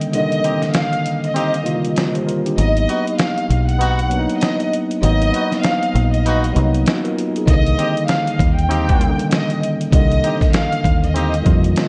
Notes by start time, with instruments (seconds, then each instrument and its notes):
Already playing: tine electric piano C2 D3 D#3 G3 A#3 C#4
0.01 closed hi-hat
0.11 tine electric piano C2 D3 G3 A#3, violin section D#5, closed hi-hat
0.19 tine electric piano D#3
0.32 closed hi-hat
0.44 horn section C4 D#4 G4, closed hi-hat
0.62 snare, closed hi-hat
0.74 violin section F5, snare, closed hi-hat
0.93 closed hi-hat
1.06 closed hi-hat
1.24 violin section D#5, closed hi-hat
1.34 horn section C4 D#4 G4, closed hi-hat
1.54 closed hi-hat
1.62 tine electric piano C2 D#3 G3 A#3 F4, closed hi-hat
1.85 closed hi-hat
1.96 tine electric piano F4 A#4, snare, closed hi-hat
2.14 tine electric piano G4 C5, closed hi-hat
2.26 tine electric piano F4 A#4, closed hi-hat
2.46 tine electric piano D4 G4, closed hi-hat
2.57 fingered electric bass G#1, tine electric piano F#3 A#3 B3 D#4, violin section D#5, closed hi-hat
2.77 closed hi-hat
2.89 horn section B3 D#4 F#4, closed hi-hat
3.07 closed hi-hat
3.18 violin section F5, snare, closed hi-hat
3.38 closed hi-hat
3.50 fingered electric bass B1, closed hi-hat
3.69 violin section F#5, closed hi-hat
3.79 horn section B3 D#4 F#4, closed hi-hat
3.99 closed hi-hat
4.09 tine electric piano F#3 A#3 B3 D4, closed hi-hat
4.19 tine electric piano D#4
4.30 closed hi-hat
4.40 violin section D#5, snare, closed hi-hat
4.60 closed hi-hat
4.73 closed hi-hat
4.91 closed hi-hat
5.02 fingered electric bass G#1, tine electric piano F#3 A#3 B3 D#4, violin section D#5, closed hi-hat
5.22 closed hi-hat
5.33 horn section B3 D#4 F#4, closed hi-hat
5.52 snare, closed hi-hat
5.63 violin section F5, snare, closed hi-hat
5.83 closed hi-hat
5.95 fingered electric bass A#1, closed hi-hat
6.13 violin section D#5, closed hi-hat
6.24 horn section B3 D#4 F#4, closed hi-hat
6.44 closed hi-hat
6.53 fingered electric bass C2, tine electric piano F#3 A#3 B3 D#4, closed hi-hat
6.74 closed hi-hat
6.86 tine electric piano C#4 F#4, snare, closed hi-hat
7.04 tine electric piano F4 A#4, closed hi-hat
7.18 closed hi-hat
7.36 tine electric piano D#4 G#4, closed hi-hat
7.45 tine electric piano C2 D3 D#3 G3 A#3, fingered electric bass C2, violin section D#5, kick, closed hi-hat
7.67 closed hi-hat
7.77 horn section C4 D#4 G4, closed hi-hat
7.97 closed hi-hat
8.08 violin section F5, snare, closed hi-hat
8.27 closed hi-hat
8.39 fingered electric bass D#2, kick, closed hi-hat
8.58 violin section G5, closed hi-hat
8.69 horn section C4 D#4 G4, closed hi-hat
8.89 kick, closed hi-hat
8.97 tine electric piano C2 D#3 G3 A#3 C#4, closed hi-hat
9.07 tine electric piano D3
9.19 closed hi-hat
9.31 violin section D#5, snare, closed hi-hat
9.50 closed hi-hat
9.63 closed hi-hat
9.81 closed hi-hat
9.91 tine electric piano C2 D3 G3 A#3, fingered electric bass C2, violin section D#5, kick, closed hi-hat
9.98 tine electric piano D#3
10.12 closed hi-hat
10.23 horn section C4 D#4 G4, closed hi-hat
10.41 kick, snare, closed hi-hat
10.53 violin section F5, snare, closed hi-hat
10.73 closed hi-hat
10.84 fingered electric bass D#2, kick, closed hi-hat
11.04 violin section D#5, closed hi-hat
11.14 horn section C4 D#4 G4, closed hi-hat
11.34 closed hi-hat
11.42 tine electric piano C2 D#3 G3 A#3 F4, kick, closed hi-hat
11.46 fingered electric bass F2
11.64 closed hi-hat
11.76 tine electric piano F4 A#4, snare, closed hi-hat